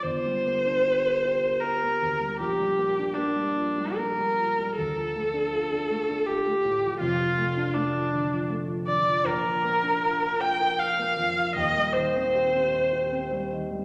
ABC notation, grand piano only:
X:1
M:3/4
L:1/16
Q:1/4=78
K:Gm
V:1 name="Grand piano"
G,,, G, B, D G B G B G B, D,, G, | B,,, G, B, D B, G, B,, G, B, G, B,, G, | D,, F, A, D F D A, D F A, A,, F, | [F,,,F,,] F, A, D A, F, D, F, A, F, D, F, |
[K:Cdor] B,,, F, B, D F B F B F B, F,, F, | [E,,,E,,] G, E, C G C c G C G, E, G, |]